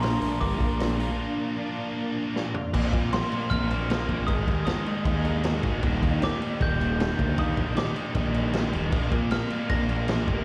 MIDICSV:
0, 0, Header, 1, 7, 480
1, 0, Start_track
1, 0, Tempo, 387097
1, 1471, Time_signature, 4, 2, 24, 8
1, 12951, End_track
2, 0, Start_track
2, 0, Title_t, "Glockenspiel"
2, 0, Program_c, 0, 9
2, 26, Note_on_c, 0, 84, 89
2, 504, Note_on_c, 0, 86, 86
2, 522, Note_off_c, 0, 84, 0
2, 2862, Note_off_c, 0, 86, 0
2, 3881, Note_on_c, 0, 84, 93
2, 4339, Note_on_c, 0, 89, 108
2, 4372, Note_off_c, 0, 84, 0
2, 5290, Note_on_c, 0, 87, 90
2, 5336, Note_off_c, 0, 89, 0
2, 5753, Note_off_c, 0, 87, 0
2, 5768, Note_on_c, 0, 87, 81
2, 6452, Note_off_c, 0, 87, 0
2, 7734, Note_on_c, 0, 86, 98
2, 8171, Note_off_c, 0, 86, 0
2, 8214, Note_on_c, 0, 91, 113
2, 9163, Note_on_c, 0, 87, 90
2, 9191, Note_off_c, 0, 91, 0
2, 9637, Note_on_c, 0, 86, 80
2, 9652, Note_off_c, 0, 87, 0
2, 10304, Note_off_c, 0, 86, 0
2, 11550, Note_on_c, 0, 89, 85
2, 12024, Note_on_c, 0, 94, 107
2, 12044, Note_off_c, 0, 89, 0
2, 12936, Note_off_c, 0, 94, 0
2, 12951, End_track
3, 0, Start_track
3, 0, Title_t, "String machine"
3, 0, Program_c, 1, 50
3, 0, Note_on_c, 1, 62, 81
3, 0, Note_on_c, 1, 70, 70
3, 0, Note_on_c, 1, 77, 86
3, 3347, Note_off_c, 1, 77, 0
3, 3349, Note_off_c, 1, 62, 0
3, 3349, Note_off_c, 1, 70, 0
3, 3386, Note_on_c, 1, 60, 81
3, 3386, Note_on_c, 1, 70, 73
3, 3390, Note_on_c, 1, 77, 88
3, 5292, Note_off_c, 1, 60, 0
3, 5292, Note_off_c, 1, 70, 0
3, 5293, Note_off_c, 1, 77, 0
3, 5298, Note_on_c, 1, 68, 75
3, 5303, Note_on_c, 1, 63, 87
3, 5306, Note_on_c, 1, 58, 78
3, 7206, Note_off_c, 1, 68, 0
3, 7211, Note_off_c, 1, 58, 0
3, 7226, Note_on_c, 1, 62, 85
3, 7226, Note_on_c, 1, 67, 71
3, 11015, Note_off_c, 1, 63, 0
3, 11028, Note_off_c, 1, 62, 0
3, 11028, Note_off_c, 1, 67, 0
3, 11049, Note_on_c, 1, 60, 86
3, 11050, Note_on_c, 1, 70, 74
3, 11051, Note_on_c, 1, 77, 85
3, 12951, Note_off_c, 1, 60, 0
3, 12951, Note_off_c, 1, 70, 0
3, 12951, Note_off_c, 1, 77, 0
3, 12951, End_track
4, 0, Start_track
4, 0, Title_t, "Clean electric guitar"
4, 0, Program_c, 2, 27
4, 0, Note_on_c, 2, 46, 77
4, 0, Note_on_c, 2, 53, 76
4, 0, Note_on_c, 2, 65, 69
4, 249, Note_off_c, 2, 65, 0
4, 254, Note_on_c, 2, 65, 72
4, 500, Note_on_c, 2, 58, 69
4, 739, Note_off_c, 2, 53, 0
4, 744, Note_on_c, 2, 53, 68
4, 979, Note_on_c, 2, 62, 76
4, 1209, Note_off_c, 2, 65, 0
4, 1457, Note_off_c, 2, 46, 0
4, 1462, Note_on_c, 2, 46, 74
4, 1684, Note_off_c, 2, 53, 0
4, 1699, Note_on_c, 2, 53, 70
4, 1707, Note_off_c, 2, 58, 0
4, 1927, Note_off_c, 2, 62, 0
4, 2183, Note_on_c, 2, 65, 72
4, 2420, Note_on_c, 2, 58, 76
4, 2644, Note_off_c, 2, 53, 0
4, 2659, Note_on_c, 2, 53, 70
4, 2668, Note_off_c, 2, 46, 0
4, 2903, Note_on_c, 2, 62, 76
4, 3135, Note_off_c, 2, 65, 0
4, 3149, Note_on_c, 2, 65, 78
4, 3381, Note_off_c, 2, 53, 0
4, 3387, Note_off_c, 2, 58, 0
4, 3389, Note_off_c, 2, 62, 0
4, 3392, Note_off_c, 2, 65, 0
4, 12951, End_track
5, 0, Start_track
5, 0, Title_t, "Distorted electric guitar"
5, 0, Program_c, 3, 30
5, 13, Note_on_c, 3, 46, 80
5, 25, Note_on_c, 3, 53, 79
5, 34, Note_on_c, 3, 58, 78
5, 39, Note_on_c, 3, 62, 80
5, 50, Note_on_c, 3, 65, 80
5, 1206, Note_off_c, 3, 46, 0
5, 1210, Note_on_c, 3, 46, 86
5, 1219, Note_off_c, 3, 53, 0
5, 1222, Note_off_c, 3, 62, 0
5, 1224, Note_on_c, 3, 53, 93
5, 1227, Note_off_c, 3, 58, 0
5, 1232, Note_on_c, 3, 58, 89
5, 1240, Note_on_c, 3, 62, 100
5, 1244, Note_off_c, 3, 65, 0
5, 1249, Note_on_c, 3, 65, 92
5, 1920, Note_off_c, 3, 46, 0
5, 1934, Note_off_c, 3, 53, 0
5, 1935, Note_on_c, 3, 46, 72
5, 1938, Note_off_c, 3, 58, 0
5, 1943, Note_off_c, 3, 62, 0
5, 1947, Note_off_c, 3, 65, 0
5, 1948, Note_on_c, 3, 53, 71
5, 1961, Note_on_c, 3, 58, 75
5, 1971, Note_on_c, 3, 62, 76
5, 1975, Note_on_c, 3, 65, 80
5, 3131, Note_off_c, 3, 46, 0
5, 3138, Note_off_c, 3, 53, 0
5, 3144, Note_off_c, 3, 58, 0
5, 3149, Note_off_c, 3, 62, 0
5, 3151, Note_off_c, 3, 65, 0
5, 3393, Note_on_c, 3, 46, 102
5, 3396, Note_on_c, 3, 53, 99
5, 3406, Note_on_c, 3, 58, 124
5, 3623, Note_off_c, 3, 46, 0
5, 3629, Note_off_c, 3, 53, 0
5, 3638, Note_on_c, 3, 46, 87
5, 3644, Note_on_c, 3, 53, 85
5, 3645, Note_off_c, 3, 58, 0
5, 3650, Note_on_c, 3, 58, 99
5, 3856, Note_off_c, 3, 46, 0
5, 3860, Note_off_c, 3, 53, 0
5, 3871, Note_on_c, 3, 46, 78
5, 3875, Note_on_c, 3, 53, 91
5, 3877, Note_off_c, 3, 58, 0
5, 3882, Note_on_c, 3, 58, 94
5, 4102, Note_off_c, 3, 46, 0
5, 4108, Note_off_c, 3, 53, 0
5, 4117, Note_on_c, 3, 46, 91
5, 4123, Note_on_c, 3, 53, 93
5, 4127, Note_off_c, 3, 58, 0
5, 4132, Note_on_c, 3, 58, 89
5, 4338, Note_off_c, 3, 46, 0
5, 4342, Note_off_c, 3, 53, 0
5, 4353, Note_on_c, 3, 46, 96
5, 4357, Note_on_c, 3, 53, 111
5, 4361, Note_off_c, 3, 58, 0
5, 4366, Note_on_c, 3, 58, 118
5, 4577, Note_off_c, 3, 46, 0
5, 4582, Note_off_c, 3, 53, 0
5, 4592, Note_on_c, 3, 46, 82
5, 4597, Note_on_c, 3, 53, 82
5, 4601, Note_off_c, 3, 58, 0
5, 4606, Note_on_c, 3, 58, 95
5, 4810, Note_off_c, 3, 46, 0
5, 4817, Note_off_c, 3, 53, 0
5, 4825, Note_on_c, 3, 46, 86
5, 4832, Note_off_c, 3, 58, 0
5, 4832, Note_on_c, 3, 53, 85
5, 4836, Note_on_c, 3, 58, 98
5, 5050, Note_off_c, 3, 46, 0
5, 5061, Note_off_c, 3, 53, 0
5, 5065, Note_on_c, 3, 46, 80
5, 5076, Note_on_c, 3, 53, 90
5, 5078, Note_off_c, 3, 58, 0
5, 5083, Note_on_c, 3, 58, 99
5, 5296, Note_off_c, 3, 46, 0
5, 5301, Note_off_c, 3, 53, 0
5, 5306, Note_on_c, 3, 44, 98
5, 5312, Note_on_c, 3, 51, 96
5, 5316, Note_off_c, 3, 58, 0
5, 5321, Note_on_c, 3, 56, 122
5, 5526, Note_off_c, 3, 44, 0
5, 5539, Note_off_c, 3, 51, 0
5, 5541, Note_on_c, 3, 44, 86
5, 5546, Note_off_c, 3, 56, 0
5, 5553, Note_on_c, 3, 51, 87
5, 5560, Note_on_c, 3, 56, 95
5, 5774, Note_off_c, 3, 44, 0
5, 5783, Note_off_c, 3, 51, 0
5, 5787, Note_off_c, 3, 56, 0
5, 5789, Note_on_c, 3, 44, 88
5, 5798, Note_on_c, 3, 51, 90
5, 5802, Note_on_c, 3, 56, 89
5, 6015, Note_off_c, 3, 44, 0
5, 6020, Note_off_c, 3, 51, 0
5, 6027, Note_off_c, 3, 56, 0
5, 6030, Note_on_c, 3, 44, 90
5, 6035, Note_on_c, 3, 51, 85
5, 6042, Note_on_c, 3, 56, 99
5, 6253, Note_off_c, 3, 44, 0
5, 6261, Note_off_c, 3, 51, 0
5, 6268, Note_on_c, 3, 44, 109
5, 6269, Note_off_c, 3, 56, 0
5, 6276, Note_on_c, 3, 51, 108
5, 6284, Note_on_c, 3, 56, 101
5, 6491, Note_off_c, 3, 44, 0
5, 6501, Note_off_c, 3, 51, 0
5, 6505, Note_on_c, 3, 44, 86
5, 6506, Note_off_c, 3, 56, 0
5, 6516, Note_on_c, 3, 51, 89
5, 6521, Note_on_c, 3, 56, 93
5, 6731, Note_off_c, 3, 44, 0
5, 6738, Note_off_c, 3, 51, 0
5, 6740, Note_off_c, 3, 56, 0
5, 6746, Note_on_c, 3, 44, 84
5, 6753, Note_on_c, 3, 51, 93
5, 6755, Note_on_c, 3, 56, 100
5, 6970, Note_off_c, 3, 44, 0
5, 6980, Note_off_c, 3, 51, 0
5, 6983, Note_off_c, 3, 56, 0
5, 6985, Note_on_c, 3, 44, 78
5, 6995, Note_on_c, 3, 51, 93
5, 6998, Note_on_c, 3, 56, 96
5, 7215, Note_off_c, 3, 44, 0
5, 7220, Note_off_c, 3, 51, 0
5, 7222, Note_off_c, 3, 56, 0
5, 7226, Note_on_c, 3, 39, 102
5, 7235, Note_on_c, 3, 46, 114
5, 7240, Note_on_c, 3, 51, 127
5, 7463, Note_off_c, 3, 46, 0
5, 7465, Note_off_c, 3, 39, 0
5, 7470, Note_on_c, 3, 39, 87
5, 7475, Note_off_c, 3, 51, 0
5, 7478, Note_on_c, 3, 46, 92
5, 7480, Note_on_c, 3, 51, 92
5, 7700, Note_off_c, 3, 46, 0
5, 7703, Note_off_c, 3, 39, 0
5, 7708, Note_on_c, 3, 39, 89
5, 7715, Note_on_c, 3, 46, 88
5, 7718, Note_off_c, 3, 51, 0
5, 7723, Note_on_c, 3, 51, 97
5, 7939, Note_off_c, 3, 46, 0
5, 7942, Note_off_c, 3, 39, 0
5, 7947, Note_on_c, 3, 39, 91
5, 7954, Note_on_c, 3, 46, 93
5, 7956, Note_off_c, 3, 51, 0
5, 7961, Note_on_c, 3, 51, 89
5, 8167, Note_off_c, 3, 39, 0
5, 8171, Note_off_c, 3, 46, 0
5, 8177, Note_off_c, 3, 51, 0
5, 8182, Note_on_c, 3, 39, 102
5, 8186, Note_on_c, 3, 46, 105
5, 8192, Note_on_c, 3, 51, 120
5, 8406, Note_off_c, 3, 39, 0
5, 8417, Note_off_c, 3, 46, 0
5, 8420, Note_off_c, 3, 51, 0
5, 8421, Note_on_c, 3, 39, 89
5, 8432, Note_on_c, 3, 46, 96
5, 8435, Note_on_c, 3, 51, 102
5, 8649, Note_off_c, 3, 39, 0
5, 8657, Note_off_c, 3, 46, 0
5, 8659, Note_off_c, 3, 51, 0
5, 8664, Note_on_c, 3, 39, 95
5, 8672, Note_on_c, 3, 46, 93
5, 8674, Note_on_c, 3, 51, 102
5, 8890, Note_off_c, 3, 39, 0
5, 8896, Note_off_c, 3, 46, 0
5, 8903, Note_off_c, 3, 51, 0
5, 8905, Note_on_c, 3, 39, 81
5, 8911, Note_on_c, 3, 46, 91
5, 8918, Note_on_c, 3, 51, 94
5, 9124, Note_off_c, 3, 39, 0
5, 9130, Note_off_c, 3, 46, 0
5, 9136, Note_off_c, 3, 51, 0
5, 9139, Note_on_c, 3, 39, 98
5, 9145, Note_on_c, 3, 46, 105
5, 9151, Note_on_c, 3, 51, 116
5, 9369, Note_off_c, 3, 39, 0
5, 9377, Note_off_c, 3, 46, 0
5, 9381, Note_off_c, 3, 51, 0
5, 9384, Note_on_c, 3, 39, 88
5, 9392, Note_on_c, 3, 46, 88
5, 9396, Note_on_c, 3, 51, 93
5, 9606, Note_off_c, 3, 39, 0
5, 9613, Note_off_c, 3, 46, 0
5, 9620, Note_on_c, 3, 39, 82
5, 9622, Note_off_c, 3, 51, 0
5, 9628, Note_on_c, 3, 46, 84
5, 9637, Note_on_c, 3, 51, 89
5, 9857, Note_off_c, 3, 39, 0
5, 9866, Note_off_c, 3, 46, 0
5, 9870, Note_off_c, 3, 51, 0
5, 9872, Note_on_c, 3, 39, 92
5, 9880, Note_on_c, 3, 46, 95
5, 9885, Note_on_c, 3, 51, 99
5, 10094, Note_off_c, 3, 39, 0
5, 10102, Note_off_c, 3, 46, 0
5, 10109, Note_off_c, 3, 51, 0
5, 10109, Note_on_c, 3, 39, 97
5, 10117, Note_on_c, 3, 46, 97
5, 10124, Note_on_c, 3, 51, 109
5, 10331, Note_off_c, 3, 39, 0
5, 10341, Note_off_c, 3, 46, 0
5, 10346, Note_on_c, 3, 39, 90
5, 10347, Note_off_c, 3, 51, 0
5, 10355, Note_on_c, 3, 46, 89
5, 10362, Note_on_c, 3, 51, 88
5, 10578, Note_off_c, 3, 39, 0
5, 10582, Note_off_c, 3, 46, 0
5, 10593, Note_on_c, 3, 39, 97
5, 10594, Note_off_c, 3, 51, 0
5, 10597, Note_on_c, 3, 46, 99
5, 10608, Note_on_c, 3, 51, 92
5, 10815, Note_off_c, 3, 39, 0
5, 10822, Note_off_c, 3, 46, 0
5, 10830, Note_off_c, 3, 51, 0
5, 10830, Note_on_c, 3, 39, 79
5, 10837, Note_on_c, 3, 46, 85
5, 10845, Note_on_c, 3, 51, 85
5, 11051, Note_off_c, 3, 46, 0
5, 11056, Note_off_c, 3, 39, 0
5, 11064, Note_off_c, 3, 51, 0
5, 11066, Note_on_c, 3, 46, 106
5, 11072, Note_on_c, 3, 53, 111
5, 11082, Note_on_c, 3, 58, 107
5, 11294, Note_off_c, 3, 46, 0
5, 11300, Note_off_c, 3, 53, 0
5, 11309, Note_on_c, 3, 46, 87
5, 11314, Note_on_c, 3, 53, 90
5, 11316, Note_off_c, 3, 58, 0
5, 11321, Note_on_c, 3, 58, 84
5, 11535, Note_off_c, 3, 46, 0
5, 11539, Note_off_c, 3, 53, 0
5, 11549, Note_on_c, 3, 46, 80
5, 11553, Note_on_c, 3, 53, 87
5, 11558, Note_off_c, 3, 58, 0
5, 11563, Note_on_c, 3, 58, 102
5, 11764, Note_off_c, 3, 46, 0
5, 11776, Note_off_c, 3, 53, 0
5, 11779, Note_on_c, 3, 46, 89
5, 11791, Note_on_c, 3, 53, 96
5, 11792, Note_off_c, 3, 58, 0
5, 11797, Note_on_c, 3, 58, 92
5, 12009, Note_off_c, 3, 46, 0
5, 12016, Note_off_c, 3, 53, 0
5, 12024, Note_on_c, 3, 46, 98
5, 12031, Note_on_c, 3, 53, 106
5, 12038, Note_off_c, 3, 58, 0
5, 12043, Note_on_c, 3, 58, 109
5, 12241, Note_off_c, 3, 46, 0
5, 12249, Note_off_c, 3, 53, 0
5, 12256, Note_on_c, 3, 46, 88
5, 12262, Note_off_c, 3, 58, 0
5, 12264, Note_on_c, 3, 53, 88
5, 12267, Note_on_c, 3, 58, 92
5, 12482, Note_off_c, 3, 46, 0
5, 12490, Note_off_c, 3, 53, 0
5, 12497, Note_on_c, 3, 46, 84
5, 12505, Note_on_c, 3, 53, 90
5, 12506, Note_off_c, 3, 58, 0
5, 12511, Note_on_c, 3, 58, 94
5, 12728, Note_off_c, 3, 46, 0
5, 12738, Note_off_c, 3, 53, 0
5, 12743, Note_on_c, 3, 46, 83
5, 12753, Note_on_c, 3, 53, 81
5, 12754, Note_off_c, 3, 58, 0
5, 12758, Note_on_c, 3, 58, 96
5, 12951, Note_off_c, 3, 46, 0
5, 12951, Note_off_c, 3, 53, 0
5, 12951, Note_off_c, 3, 58, 0
5, 12951, End_track
6, 0, Start_track
6, 0, Title_t, "Picked electric bass"
6, 0, Program_c, 4, 34
6, 0, Note_on_c, 4, 34, 94
6, 183, Note_off_c, 4, 34, 0
6, 260, Note_on_c, 4, 34, 91
6, 462, Note_off_c, 4, 34, 0
6, 513, Note_on_c, 4, 31, 96
6, 743, Note_off_c, 4, 31, 0
6, 743, Note_on_c, 4, 34, 91
6, 1341, Note_off_c, 4, 34, 0
6, 3397, Note_on_c, 4, 34, 103
6, 3594, Note_off_c, 4, 34, 0
6, 3633, Note_on_c, 4, 46, 85
6, 3832, Note_off_c, 4, 46, 0
6, 4351, Note_on_c, 4, 34, 96
6, 4947, Note_off_c, 4, 34, 0
6, 5070, Note_on_c, 4, 34, 93
6, 5270, Note_off_c, 4, 34, 0
6, 5310, Note_on_c, 4, 32, 102
6, 5510, Note_off_c, 4, 32, 0
6, 5547, Note_on_c, 4, 39, 92
6, 5748, Note_off_c, 4, 39, 0
6, 6264, Note_on_c, 4, 39, 97
6, 6862, Note_off_c, 4, 39, 0
6, 6984, Note_on_c, 4, 32, 85
6, 7186, Note_off_c, 4, 32, 0
6, 7230, Note_on_c, 4, 27, 103
6, 7429, Note_off_c, 4, 27, 0
6, 7471, Note_on_c, 4, 39, 87
6, 7670, Note_off_c, 4, 39, 0
6, 8193, Note_on_c, 4, 27, 102
6, 8787, Note_off_c, 4, 27, 0
6, 8914, Note_on_c, 4, 38, 98
6, 9111, Note_off_c, 4, 38, 0
6, 9152, Note_on_c, 4, 39, 96
6, 9350, Note_off_c, 4, 39, 0
6, 9391, Note_on_c, 4, 34, 93
6, 9589, Note_off_c, 4, 34, 0
6, 10107, Note_on_c, 4, 34, 102
6, 10702, Note_off_c, 4, 34, 0
6, 10837, Note_on_c, 4, 27, 94
6, 11032, Note_off_c, 4, 27, 0
6, 11066, Note_on_c, 4, 34, 96
6, 11266, Note_off_c, 4, 34, 0
6, 11305, Note_on_c, 4, 46, 88
6, 11505, Note_off_c, 4, 46, 0
6, 12026, Note_on_c, 4, 34, 102
6, 12621, Note_off_c, 4, 34, 0
6, 12743, Note_on_c, 4, 31, 90
6, 12943, Note_off_c, 4, 31, 0
6, 12951, End_track
7, 0, Start_track
7, 0, Title_t, "Drums"
7, 34, Note_on_c, 9, 46, 76
7, 49, Note_on_c, 9, 38, 112
7, 158, Note_off_c, 9, 46, 0
7, 173, Note_off_c, 9, 38, 0
7, 266, Note_on_c, 9, 46, 63
7, 281, Note_on_c, 9, 38, 33
7, 390, Note_off_c, 9, 46, 0
7, 405, Note_off_c, 9, 38, 0
7, 509, Note_on_c, 9, 36, 98
7, 510, Note_on_c, 9, 46, 70
7, 633, Note_off_c, 9, 36, 0
7, 634, Note_off_c, 9, 46, 0
7, 749, Note_on_c, 9, 36, 76
7, 750, Note_on_c, 9, 46, 51
7, 873, Note_off_c, 9, 36, 0
7, 874, Note_off_c, 9, 46, 0
7, 994, Note_on_c, 9, 46, 78
7, 1009, Note_on_c, 9, 38, 121
7, 1118, Note_off_c, 9, 46, 0
7, 1133, Note_off_c, 9, 38, 0
7, 1239, Note_on_c, 9, 46, 54
7, 1363, Note_off_c, 9, 46, 0
7, 2926, Note_on_c, 9, 38, 67
7, 3050, Note_off_c, 9, 38, 0
7, 3154, Note_on_c, 9, 43, 89
7, 3278, Note_off_c, 9, 43, 0
7, 3395, Note_on_c, 9, 36, 113
7, 3396, Note_on_c, 9, 49, 123
7, 3396, Note_on_c, 9, 57, 90
7, 3519, Note_off_c, 9, 36, 0
7, 3520, Note_off_c, 9, 49, 0
7, 3520, Note_off_c, 9, 57, 0
7, 3636, Note_on_c, 9, 36, 85
7, 3637, Note_on_c, 9, 57, 64
7, 3760, Note_off_c, 9, 36, 0
7, 3761, Note_off_c, 9, 57, 0
7, 3878, Note_on_c, 9, 57, 88
7, 3893, Note_on_c, 9, 38, 118
7, 4002, Note_off_c, 9, 57, 0
7, 4017, Note_off_c, 9, 38, 0
7, 4113, Note_on_c, 9, 57, 58
7, 4237, Note_off_c, 9, 57, 0
7, 4350, Note_on_c, 9, 57, 78
7, 4353, Note_on_c, 9, 36, 104
7, 4474, Note_off_c, 9, 57, 0
7, 4477, Note_off_c, 9, 36, 0
7, 4596, Note_on_c, 9, 57, 60
7, 4720, Note_off_c, 9, 57, 0
7, 4836, Note_on_c, 9, 57, 84
7, 4850, Note_on_c, 9, 38, 117
7, 4960, Note_off_c, 9, 57, 0
7, 4974, Note_off_c, 9, 38, 0
7, 5071, Note_on_c, 9, 36, 78
7, 5071, Note_on_c, 9, 57, 59
7, 5195, Note_off_c, 9, 36, 0
7, 5195, Note_off_c, 9, 57, 0
7, 5304, Note_on_c, 9, 57, 80
7, 5310, Note_on_c, 9, 36, 115
7, 5428, Note_off_c, 9, 57, 0
7, 5434, Note_off_c, 9, 36, 0
7, 5550, Note_on_c, 9, 36, 89
7, 5550, Note_on_c, 9, 57, 62
7, 5674, Note_off_c, 9, 36, 0
7, 5674, Note_off_c, 9, 57, 0
7, 5784, Note_on_c, 9, 57, 84
7, 5799, Note_on_c, 9, 38, 117
7, 5908, Note_off_c, 9, 57, 0
7, 5923, Note_off_c, 9, 38, 0
7, 6029, Note_on_c, 9, 57, 61
7, 6153, Note_off_c, 9, 57, 0
7, 6264, Note_on_c, 9, 57, 85
7, 6269, Note_on_c, 9, 36, 106
7, 6388, Note_off_c, 9, 57, 0
7, 6393, Note_off_c, 9, 36, 0
7, 6505, Note_on_c, 9, 57, 60
7, 6629, Note_off_c, 9, 57, 0
7, 6741, Note_on_c, 9, 57, 86
7, 6755, Note_on_c, 9, 38, 119
7, 6865, Note_off_c, 9, 57, 0
7, 6879, Note_off_c, 9, 38, 0
7, 6981, Note_on_c, 9, 57, 73
7, 6989, Note_on_c, 9, 36, 78
7, 7105, Note_off_c, 9, 57, 0
7, 7113, Note_off_c, 9, 36, 0
7, 7225, Note_on_c, 9, 57, 82
7, 7230, Note_on_c, 9, 36, 126
7, 7349, Note_off_c, 9, 57, 0
7, 7354, Note_off_c, 9, 36, 0
7, 7473, Note_on_c, 9, 36, 89
7, 7473, Note_on_c, 9, 57, 65
7, 7597, Note_off_c, 9, 36, 0
7, 7597, Note_off_c, 9, 57, 0
7, 7712, Note_on_c, 9, 57, 83
7, 7727, Note_on_c, 9, 38, 124
7, 7836, Note_off_c, 9, 57, 0
7, 7851, Note_off_c, 9, 38, 0
7, 7956, Note_on_c, 9, 57, 63
7, 8080, Note_off_c, 9, 57, 0
7, 8196, Note_on_c, 9, 36, 113
7, 8196, Note_on_c, 9, 57, 72
7, 8320, Note_off_c, 9, 36, 0
7, 8320, Note_off_c, 9, 57, 0
7, 8445, Note_on_c, 9, 57, 59
7, 8569, Note_off_c, 9, 57, 0
7, 8682, Note_on_c, 9, 57, 83
7, 8697, Note_on_c, 9, 38, 127
7, 8806, Note_off_c, 9, 57, 0
7, 8821, Note_off_c, 9, 38, 0
7, 8916, Note_on_c, 9, 36, 88
7, 8919, Note_on_c, 9, 57, 65
7, 9040, Note_off_c, 9, 36, 0
7, 9043, Note_off_c, 9, 57, 0
7, 9149, Note_on_c, 9, 57, 80
7, 9154, Note_on_c, 9, 36, 118
7, 9273, Note_off_c, 9, 57, 0
7, 9278, Note_off_c, 9, 36, 0
7, 9387, Note_on_c, 9, 57, 62
7, 9392, Note_on_c, 9, 36, 89
7, 9511, Note_off_c, 9, 57, 0
7, 9516, Note_off_c, 9, 36, 0
7, 9630, Note_on_c, 9, 57, 88
7, 9644, Note_on_c, 9, 38, 117
7, 9754, Note_off_c, 9, 57, 0
7, 9768, Note_off_c, 9, 38, 0
7, 9868, Note_on_c, 9, 57, 62
7, 9992, Note_off_c, 9, 57, 0
7, 10101, Note_on_c, 9, 57, 81
7, 10109, Note_on_c, 9, 36, 103
7, 10225, Note_off_c, 9, 57, 0
7, 10233, Note_off_c, 9, 36, 0
7, 10346, Note_on_c, 9, 57, 62
7, 10470, Note_off_c, 9, 57, 0
7, 10583, Note_on_c, 9, 57, 94
7, 10597, Note_on_c, 9, 38, 115
7, 10707, Note_off_c, 9, 57, 0
7, 10721, Note_off_c, 9, 38, 0
7, 10826, Note_on_c, 9, 57, 65
7, 10950, Note_off_c, 9, 57, 0
7, 11063, Note_on_c, 9, 57, 86
7, 11069, Note_on_c, 9, 36, 125
7, 11187, Note_off_c, 9, 57, 0
7, 11193, Note_off_c, 9, 36, 0
7, 11302, Note_on_c, 9, 57, 67
7, 11307, Note_on_c, 9, 36, 94
7, 11426, Note_off_c, 9, 57, 0
7, 11431, Note_off_c, 9, 36, 0
7, 11541, Note_on_c, 9, 57, 87
7, 11556, Note_on_c, 9, 38, 120
7, 11665, Note_off_c, 9, 57, 0
7, 11680, Note_off_c, 9, 38, 0
7, 11784, Note_on_c, 9, 57, 64
7, 11908, Note_off_c, 9, 57, 0
7, 12020, Note_on_c, 9, 57, 84
7, 12026, Note_on_c, 9, 36, 111
7, 12144, Note_off_c, 9, 57, 0
7, 12150, Note_off_c, 9, 36, 0
7, 12263, Note_on_c, 9, 57, 62
7, 12387, Note_off_c, 9, 57, 0
7, 12497, Note_on_c, 9, 57, 89
7, 12512, Note_on_c, 9, 38, 122
7, 12621, Note_off_c, 9, 57, 0
7, 12636, Note_off_c, 9, 38, 0
7, 12742, Note_on_c, 9, 57, 63
7, 12746, Note_on_c, 9, 36, 78
7, 12866, Note_off_c, 9, 57, 0
7, 12870, Note_off_c, 9, 36, 0
7, 12951, End_track
0, 0, End_of_file